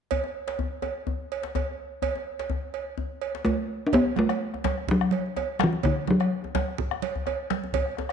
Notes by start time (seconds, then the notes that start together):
0.11 cowbell, djembe bass
0.24 djembe tone
0.48 cowbell, djembe slap
0.59 djembe bass
0.82 cowbell, djembe tone
1.07 djembe bass
1.32 cowbell
1.43 djembe slap
1.55 cowbell, djembe tone, djembe bass
2.02 cowbell, djembe bass
2.16 djembe tone
2.39 cowbell, djembe slap
2.50 djembe bass
2.74 cowbell
2.98 djembe bass
3.22 cowbell
3.35 djembe slap
3.45 A3, cowbell, djembe tone, djembe bass
3.87 D4
3.93 B3, bombo low, cowbell, low conga, djembe bass
4.06 bombo rim
4.16 A3, bombo rim, high conga, djembe tone
4.29 bombo rim, cowbell
4.54 bombo rim, djembe tone
4.64 cowbell, djembe slap, high conga, djembe bass
4.78 bombo rim, djembe slap
4.87 F#3, bombo low, low conga
5.01 bombo rim, djembe tone
5.11 cowbell, high conga
5.26 djembe slap
5.36 bombo rim, cowbell, djembe tone
5.59 bombo rim, djembe slap, high conga
5.64 E3
5.73 djembe tone
5.83 D3, bombo low, cowbell, low conga, djembe bass
5.96 bombo rim
6.07 F#3, bombo rim, djembe tone, high conga
6.20 bombo rim, cowbell
6.44 djembe tone
6.55 cowbell, djembe slap, high conga, djembe bass
6.67 bombo rim, djembe slap
6.78 bombo low, low conga
6.91 bombo rim, djembe tone
7.02 cowbell, high conga
7.15 djembe slap, djembe bass
7.26 bombo rim, cowbell, djembe tone
7.50 djembe slap, high conga
7.64 djembe tone
7.73 bombo low, cowbell, low conga, djembe bass
7.86 bombo rim
7.97 bombo rim, djembe tone
8.09 bombo rim